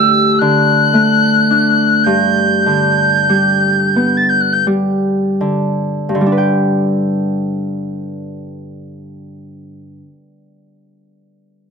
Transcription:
0, 0, Header, 1, 3, 480
1, 0, Start_track
1, 0, Key_signature, 1, "major"
1, 0, Tempo, 1050788
1, 426, Tempo, 1121495
1, 906, Time_signature, 6, 3, 24, 8
1, 906, Tempo, 1226994
1, 1386, Tempo, 1372998
1, 1866, Tempo, 1562500
1, 2346, Tempo, 1630435
1, 2826, Tempo, 1562500
1, 3306, Tempo, 1617251
1, 3987, End_track
2, 0, Start_track
2, 0, Title_t, "Tin whistle"
2, 0, Program_c, 0, 75
2, 0, Note_on_c, 0, 88, 85
2, 177, Note_on_c, 0, 90, 93
2, 184, Note_off_c, 0, 88, 0
2, 899, Note_on_c, 0, 91, 83
2, 905, Note_off_c, 0, 90, 0
2, 1696, Note_on_c, 0, 93, 66
2, 1702, Note_off_c, 0, 91, 0
2, 1739, Note_on_c, 0, 91, 66
2, 1744, Note_off_c, 0, 93, 0
2, 1779, Note_on_c, 0, 90, 60
2, 1784, Note_off_c, 0, 91, 0
2, 1822, Note_on_c, 0, 91, 63
2, 1827, Note_off_c, 0, 90, 0
2, 1866, Note_off_c, 0, 91, 0
2, 3987, End_track
3, 0, Start_track
3, 0, Title_t, "Harp"
3, 0, Program_c, 1, 46
3, 0, Note_on_c, 1, 50, 64
3, 0, Note_on_c, 1, 57, 51
3, 0, Note_on_c, 1, 64, 55
3, 0, Note_on_c, 1, 67, 46
3, 183, Note_off_c, 1, 50, 0
3, 189, Note_on_c, 1, 50, 59
3, 226, Note_off_c, 1, 64, 0
3, 426, Note_off_c, 1, 57, 0
3, 428, Note_on_c, 1, 57, 47
3, 671, Note_on_c, 1, 62, 46
3, 909, Note_on_c, 1, 43, 55
3, 926, Note_off_c, 1, 50, 0
3, 983, Note_off_c, 1, 67, 0
3, 1144, Note_on_c, 1, 50, 46
3, 1390, Note_on_c, 1, 55, 44
3, 1623, Note_on_c, 1, 59, 38
3, 1730, Note_off_c, 1, 57, 0
3, 1743, Note_off_c, 1, 62, 0
3, 1866, Note_off_c, 1, 55, 0
3, 1870, Note_on_c, 1, 55, 49
3, 2093, Note_off_c, 1, 50, 0
3, 2097, Note_on_c, 1, 50, 41
3, 2113, Note_off_c, 1, 55, 0
3, 2268, Note_off_c, 1, 43, 0
3, 2307, Note_on_c, 1, 43, 44
3, 2321, Note_off_c, 1, 50, 0
3, 2325, Note_on_c, 1, 50, 44
3, 2344, Note_on_c, 1, 55, 42
3, 2360, Note_on_c, 1, 62, 41
3, 2376, Note_on_c, 1, 71, 42
3, 2393, Note_on_c, 1, 79, 50
3, 2596, Note_off_c, 1, 59, 0
3, 3335, Note_off_c, 1, 62, 0
3, 3352, Note_off_c, 1, 71, 0
3, 3369, Note_off_c, 1, 79, 0
3, 3415, Note_off_c, 1, 55, 0
3, 3478, Note_off_c, 1, 43, 0
3, 3495, Note_off_c, 1, 50, 0
3, 3987, End_track
0, 0, End_of_file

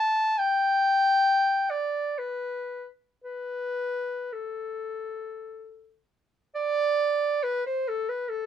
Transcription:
0, 0, Header, 1, 2, 480
1, 0, Start_track
1, 0, Tempo, 855920
1, 227, Time_signature, 3, 2, 24, 8
1, 714, Tempo, 924499
1, 1194, Tempo, 1065719
1, 2634, Tempo, 1171875
1, 3114, Tempo, 869565
1, 4160, End_track
2, 0, Start_track
2, 0, Title_t, "Clarinet"
2, 0, Program_c, 0, 71
2, 0, Note_on_c, 0, 81, 114
2, 216, Note_on_c, 0, 79, 121
2, 224, Note_off_c, 0, 81, 0
2, 937, Note_on_c, 0, 74, 94
2, 945, Note_off_c, 0, 79, 0
2, 1187, Note_on_c, 0, 71, 86
2, 1195, Note_off_c, 0, 74, 0
2, 1503, Note_off_c, 0, 71, 0
2, 1664, Note_on_c, 0, 71, 95
2, 2153, Note_on_c, 0, 69, 69
2, 2160, Note_off_c, 0, 71, 0
2, 2877, Note_off_c, 0, 69, 0
2, 3107, Note_on_c, 0, 74, 117
2, 3593, Note_on_c, 0, 71, 105
2, 3601, Note_off_c, 0, 74, 0
2, 3716, Note_off_c, 0, 71, 0
2, 3719, Note_on_c, 0, 72, 89
2, 3839, Note_on_c, 0, 69, 94
2, 3848, Note_off_c, 0, 72, 0
2, 3955, Note_on_c, 0, 71, 85
2, 3963, Note_off_c, 0, 69, 0
2, 4066, Note_on_c, 0, 69, 90
2, 4075, Note_off_c, 0, 71, 0
2, 4160, Note_off_c, 0, 69, 0
2, 4160, End_track
0, 0, End_of_file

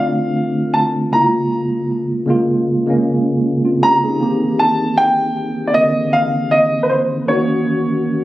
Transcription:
0, 0, Header, 1, 3, 480
1, 0, Start_track
1, 0, Tempo, 769231
1, 702, Time_signature, 4, 2, 24, 8
1, 5142, End_track
2, 0, Start_track
2, 0, Title_t, "Grand piano"
2, 0, Program_c, 0, 0
2, 0, Note_on_c, 0, 77, 95
2, 437, Note_off_c, 0, 77, 0
2, 460, Note_on_c, 0, 81, 90
2, 514, Note_off_c, 0, 81, 0
2, 704, Note_on_c, 0, 82, 86
2, 1158, Note_off_c, 0, 82, 0
2, 2390, Note_on_c, 0, 82, 107
2, 2867, Note_on_c, 0, 81, 92
2, 2880, Note_off_c, 0, 82, 0
2, 3105, Note_on_c, 0, 79, 107
2, 3112, Note_off_c, 0, 81, 0
2, 3518, Note_off_c, 0, 79, 0
2, 3541, Note_on_c, 0, 74, 73
2, 3582, Note_off_c, 0, 74, 0
2, 3583, Note_on_c, 0, 75, 99
2, 3825, Note_on_c, 0, 77, 94
2, 3830, Note_off_c, 0, 75, 0
2, 4063, Note_on_c, 0, 75, 95
2, 4071, Note_off_c, 0, 77, 0
2, 4262, Note_on_c, 0, 71, 63
2, 4269, Note_off_c, 0, 75, 0
2, 4302, Note_off_c, 0, 71, 0
2, 4302, Note_on_c, 0, 72, 78
2, 4356, Note_off_c, 0, 72, 0
2, 4544, Note_on_c, 0, 73, 78
2, 5142, Note_off_c, 0, 73, 0
2, 5142, End_track
3, 0, Start_track
3, 0, Title_t, "Tine electric piano"
3, 0, Program_c, 1, 4
3, 0, Control_c, 1, 64, 127
3, 0, Note_on_c, 1, 50, 75
3, 0, Note_on_c, 1, 57, 64
3, 0, Note_on_c, 1, 60, 68
3, 0, Note_on_c, 1, 62, 78
3, 0, Note_on_c, 1, 65, 86
3, 450, Note_off_c, 1, 50, 0
3, 454, Note_off_c, 1, 57, 0
3, 459, Note_off_c, 1, 60, 0
3, 462, Note_off_c, 1, 65, 0
3, 693, Note_on_c, 1, 49, 70
3, 699, Note_on_c, 1, 56, 67
3, 709, Note_on_c, 1, 58, 71
3, 711, Control_c, 1, 64, 0
3, 713, Note_off_c, 1, 62, 0
3, 717, Note_on_c, 1, 64, 64
3, 753, Note_off_c, 1, 64, 0
3, 756, Note_on_c, 1, 65, 80
3, 811, Control_c, 1, 64, 127
3, 1207, Note_off_c, 1, 49, 0
3, 1210, Note_off_c, 1, 56, 0
3, 1215, Note_off_c, 1, 58, 0
3, 1239, Note_off_c, 1, 65, 0
3, 1412, Note_on_c, 1, 49, 86
3, 1419, Note_on_c, 1, 56, 81
3, 1428, Note_on_c, 1, 58, 82
3, 1436, Note_on_c, 1, 65, 95
3, 1672, Note_off_c, 1, 49, 0
3, 1675, Note_off_c, 1, 56, 0
3, 1680, Note_off_c, 1, 58, 0
3, 1684, Note_off_c, 1, 65, 0
3, 1785, Note_on_c, 1, 49, 87
3, 1792, Note_on_c, 1, 56, 84
3, 1800, Note_on_c, 1, 58, 81
3, 1809, Note_on_c, 1, 61, 100
3, 2151, Note_off_c, 1, 61, 0
3, 2276, Note_on_c, 1, 65, 64
3, 2281, Note_on_c, 1, 60, 51
3, 2371, Note_off_c, 1, 49, 0
3, 2375, Note_off_c, 1, 56, 0
3, 2379, Note_off_c, 1, 58, 0
3, 2379, Note_off_c, 1, 65, 0
3, 2381, Note_off_c, 1, 60, 0
3, 2386, Note_on_c, 1, 67, 70
3, 2391, Note_on_c, 1, 61, 59
3, 2507, Note_off_c, 1, 67, 0
3, 2510, Note_off_c, 1, 61, 0
3, 2519, Note_on_c, 1, 68, 67
3, 2521, Note_on_c, 1, 63, 57
3, 2614, Note_on_c, 1, 51, 74
3, 2622, Note_on_c, 1, 58, 68
3, 2629, Note_on_c, 1, 60, 65
3, 2631, Control_c, 1, 64, 0
3, 2638, Note_on_c, 1, 67, 78
3, 2723, Control_c, 1, 64, 127
3, 2743, Note_off_c, 1, 68, 0
3, 2745, Note_off_c, 1, 63, 0
3, 3298, Note_off_c, 1, 51, 0
3, 3302, Note_off_c, 1, 58, 0
3, 3305, Note_off_c, 1, 60, 0
3, 3310, Note_off_c, 1, 67, 0
3, 3573, Note_on_c, 1, 51, 70
3, 3581, Note_on_c, 1, 58, 69
3, 3588, Note_on_c, 1, 60, 62
3, 3596, Note_on_c, 1, 50, 76
3, 4258, Note_off_c, 1, 51, 0
3, 4261, Note_off_c, 1, 58, 0
3, 4265, Note_off_c, 1, 60, 0
3, 4269, Note_off_c, 1, 50, 0
3, 4533, Note_on_c, 1, 51, 75
3, 4542, Note_on_c, 1, 58, 68
3, 4551, Control_c, 1, 64, 0
3, 4551, Note_on_c, 1, 61, 66
3, 4558, Note_on_c, 1, 66, 84
3, 4667, Control_c, 1, 64, 127
3, 5142, Note_off_c, 1, 51, 0
3, 5142, Note_off_c, 1, 58, 0
3, 5142, Note_off_c, 1, 61, 0
3, 5142, Note_off_c, 1, 66, 0
3, 5142, End_track
0, 0, End_of_file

